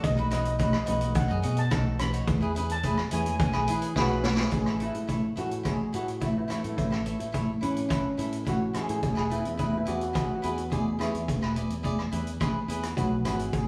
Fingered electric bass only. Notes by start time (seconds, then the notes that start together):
0.04 B1
0.89 B1
1.30 F#2
1.45 B2
1.72 B1
2.28 E2
3.13 E2
3.55 B1
3.69 E3
3.96 B1
4.53 A1
4.95 A2
5.37 A2
5.94 A2
6.64 A2
6.78 A1
7.20 A2
7.62 A2
8.18 A2
8.89 A2
9.03 E1
9.45 E2
9.88 E2
10.44 E2
11.14 E2
11.29 E1
11.70 E2
12.13 E2
12.68 E2
12.97 B1
13.25 G#1
13.54 G#1